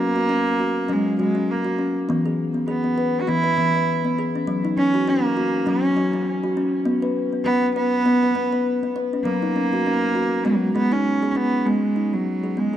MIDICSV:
0, 0, Header, 1, 3, 480
1, 0, Start_track
1, 0, Tempo, 598802
1, 1667, Time_signature, 4, 2, 24, 8
1, 10236, End_track
2, 0, Start_track
2, 0, Title_t, "Kalimba"
2, 0, Program_c, 0, 108
2, 0, Note_on_c, 0, 61, 77
2, 126, Note_on_c, 0, 66, 64
2, 127, Note_off_c, 0, 61, 0
2, 232, Note_off_c, 0, 66, 0
2, 234, Note_on_c, 0, 61, 80
2, 473, Note_off_c, 0, 61, 0
2, 479, Note_on_c, 0, 66, 67
2, 709, Note_on_c, 0, 61, 82
2, 714, Note_off_c, 0, 66, 0
2, 717, Note_on_c, 0, 54, 87
2, 926, Note_off_c, 0, 54, 0
2, 949, Note_off_c, 0, 61, 0
2, 953, Note_on_c, 0, 66, 63
2, 959, Note_on_c, 0, 54, 79
2, 1082, Note_on_c, 0, 61, 68
2, 1085, Note_off_c, 0, 66, 0
2, 1319, Note_on_c, 0, 66, 68
2, 1322, Note_off_c, 0, 61, 0
2, 1426, Note_off_c, 0, 66, 0
2, 1431, Note_on_c, 0, 61, 72
2, 1592, Note_off_c, 0, 54, 0
2, 1669, Note_off_c, 0, 61, 0
2, 1673, Note_on_c, 0, 59, 88
2, 1682, Note_on_c, 0, 52, 92
2, 1803, Note_off_c, 0, 59, 0
2, 1808, Note_on_c, 0, 68, 71
2, 1888, Note_off_c, 0, 52, 0
2, 2039, Note_on_c, 0, 59, 60
2, 2043, Note_off_c, 0, 68, 0
2, 2145, Note_off_c, 0, 59, 0
2, 2147, Note_on_c, 0, 68, 80
2, 2276, Note_on_c, 0, 59, 63
2, 2279, Note_off_c, 0, 68, 0
2, 2383, Note_off_c, 0, 59, 0
2, 2386, Note_on_c, 0, 71, 70
2, 2624, Note_on_c, 0, 59, 86
2, 2625, Note_off_c, 0, 71, 0
2, 2636, Note_on_c, 0, 52, 81
2, 2755, Note_on_c, 0, 71, 73
2, 2757, Note_off_c, 0, 59, 0
2, 2843, Note_off_c, 0, 52, 0
2, 2861, Note_on_c, 0, 59, 67
2, 2862, Note_off_c, 0, 71, 0
2, 2867, Note_on_c, 0, 52, 86
2, 2995, Note_off_c, 0, 59, 0
2, 3004, Note_on_c, 0, 71, 71
2, 3240, Note_off_c, 0, 71, 0
2, 3244, Note_on_c, 0, 59, 75
2, 3346, Note_off_c, 0, 59, 0
2, 3355, Note_on_c, 0, 68, 76
2, 3482, Note_off_c, 0, 68, 0
2, 3491, Note_on_c, 0, 61, 64
2, 3503, Note_off_c, 0, 52, 0
2, 3586, Note_on_c, 0, 54, 107
2, 3723, Note_off_c, 0, 61, 0
2, 3725, Note_on_c, 0, 63, 78
2, 3797, Note_off_c, 0, 54, 0
2, 3826, Note_off_c, 0, 63, 0
2, 3829, Note_on_c, 0, 61, 68
2, 3958, Note_off_c, 0, 61, 0
2, 3960, Note_on_c, 0, 66, 73
2, 4063, Note_off_c, 0, 66, 0
2, 4068, Note_on_c, 0, 61, 79
2, 4303, Note_on_c, 0, 66, 74
2, 4304, Note_off_c, 0, 61, 0
2, 4537, Note_on_c, 0, 61, 83
2, 4541, Note_off_c, 0, 66, 0
2, 4545, Note_on_c, 0, 54, 98
2, 4755, Note_off_c, 0, 54, 0
2, 4778, Note_off_c, 0, 61, 0
2, 4780, Note_on_c, 0, 66, 65
2, 4782, Note_on_c, 0, 54, 77
2, 4913, Note_off_c, 0, 66, 0
2, 4917, Note_on_c, 0, 61, 67
2, 5155, Note_off_c, 0, 61, 0
2, 5159, Note_on_c, 0, 66, 74
2, 5262, Note_off_c, 0, 66, 0
2, 5266, Note_on_c, 0, 61, 77
2, 5420, Note_off_c, 0, 54, 0
2, 5495, Note_on_c, 0, 59, 101
2, 5503, Note_off_c, 0, 61, 0
2, 5631, Note_on_c, 0, 71, 82
2, 5710, Note_off_c, 0, 59, 0
2, 5872, Note_off_c, 0, 71, 0
2, 5873, Note_on_c, 0, 59, 64
2, 5979, Note_off_c, 0, 59, 0
2, 5980, Note_on_c, 0, 71, 79
2, 6111, Note_on_c, 0, 59, 72
2, 6114, Note_off_c, 0, 71, 0
2, 6218, Note_off_c, 0, 59, 0
2, 6222, Note_on_c, 0, 71, 76
2, 6458, Note_on_c, 0, 59, 95
2, 6461, Note_off_c, 0, 71, 0
2, 6597, Note_on_c, 0, 71, 70
2, 6672, Note_off_c, 0, 59, 0
2, 6695, Note_on_c, 0, 59, 87
2, 6701, Note_off_c, 0, 71, 0
2, 6834, Note_on_c, 0, 71, 73
2, 7070, Note_off_c, 0, 59, 0
2, 7074, Note_off_c, 0, 71, 0
2, 7080, Note_on_c, 0, 59, 74
2, 7181, Note_on_c, 0, 71, 78
2, 7183, Note_off_c, 0, 59, 0
2, 7315, Note_off_c, 0, 71, 0
2, 7320, Note_on_c, 0, 61, 70
2, 7418, Note_on_c, 0, 54, 95
2, 7555, Note_on_c, 0, 63, 77
2, 7558, Note_off_c, 0, 61, 0
2, 7633, Note_off_c, 0, 54, 0
2, 7661, Note_off_c, 0, 63, 0
2, 7664, Note_on_c, 0, 61, 75
2, 7797, Note_off_c, 0, 61, 0
2, 7799, Note_on_c, 0, 66, 65
2, 7904, Note_off_c, 0, 66, 0
2, 7908, Note_on_c, 0, 61, 78
2, 8137, Note_on_c, 0, 66, 72
2, 8146, Note_off_c, 0, 61, 0
2, 8376, Note_on_c, 0, 59, 81
2, 8381, Note_off_c, 0, 66, 0
2, 8383, Note_on_c, 0, 56, 84
2, 8597, Note_off_c, 0, 56, 0
2, 8616, Note_on_c, 0, 68, 63
2, 8621, Note_off_c, 0, 59, 0
2, 8622, Note_on_c, 0, 56, 81
2, 8752, Note_on_c, 0, 63, 70
2, 8755, Note_off_c, 0, 68, 0
2, 8997, Note_off_c, 0, 63, 0
2, 8998, Note_on_c, 0, 68, 72
2, 9100, Note_on_c, 0, 61, 72
2, 9106, Note_off_c, 0, 68, 0
2, 9267, Note_off_c, 0, 56, 0
2, 9345, Note_off_c, 0, 61, 0
2, 9353, Note_on_c, 0, 59, 75
2, 9589, Note_on_c, 0, 63, 59
2, 9593, Note_off_c, 0, 59, 0
2, 9725, Note_off_c, 0, 63, 0
2, 9728, Note_on_c, 0, 59, 51
2, 9969, Note_off_c, 0, 59, 0
2, 9969, Note_on_c, 0, 68, 57
2, 10075, Note_off_c, 0, 68, 0
2, 10077, Note_on_c, 0, 59, 65
2, 10207, Note_on_c, 0, 68, 58
2, 10211, Note_off_c, 0, 59, 0
2, 10236, Note_off_c, 0, 68, 0
2, 10236, End_track
3, 0, Start_track
3, 0, Title_t, "Cello"
3, 0, Program_c, 1, 42
3, 0, Note_on_c, 1, 58, 112
3, 745, Note_on_c, 1, 56, 91
3, 757, Note_off_c, 1, 58, 0
3, 960, Note_off_c, 1, 56, 0
3, 964, Note_on_c, 1, 56, 85
3, 1207, Note_on_c, 1, 58, 80
3, 1219, Note_off_c, 1, 56, 0
3, 1570, Note_off_c, 1, 58, 0
3, 2146, Note_on_c, 1, 59, 90
3, 2574, Note_on_c, 1, 66, 76
3, 2586, Note_off_c, 1, 59, 0
3, 2627, Note_on_c, 1, 64, 116
3, 2640, Note_off_c, 1, 66, 0
3, 3344, Note_off_c, 1, 64, 0
3, 3827, Note_on_c, 1, 61, 106
3, 4078, Note_on_c, 1, 58, 97
3, 4090, Note_off_c, 1, 61, 0
3, 4560, Note_on_c, 1, 61, 95
3, 4572, Note_off_c, 1, 58, 0
3, 5029, Note_off_c, 1, 61, 0
3, 5967, Note_on_c, 1, 59, 113
3, 6196, Note_off_c, 1, 59, 0
3, 6214, Note_on_c, 1, 59, 118
3, 7146, Note_off_c, 1, 59, 0
3, 7400, Note_on_c, 1, 58, 111
3, 8391, Note_on_c, 1, 54, 92
3, 8403, Note_off_c, 1, 58, 0
3, 8623, Note_off_c, 1, 54, 0
3, 8628, Note_on_c, 1, 59, 98
3, 8754, Note_on_c, 1, 61, 97
3, 8766, Note_off_c, 1, 59, 0
3, 9063, Note_off_c, 1, 61, 0
3, 9063, Note_on_c, 1, 61, 70
3, 9109, Note_on_c, 1, 59, 102
3, 9121, Note_off_c, 1, 61, 0
3, 9344, Note_on_c, 1, 56, 86
3, 9356, Note_off_c, 1, 59, 0
3, 9724, Note_on_c, 1, 54, 81
3, 9736, Note_off_c, 1, 56, 0
3, 10089, Note_on_c, 1, 56, 82
3, 10101, Note_off_c, 1, 54, 0
3, 10236, Note_off_c, 1, 56, 0
3, 10236, End_track
0, 0, End_of_file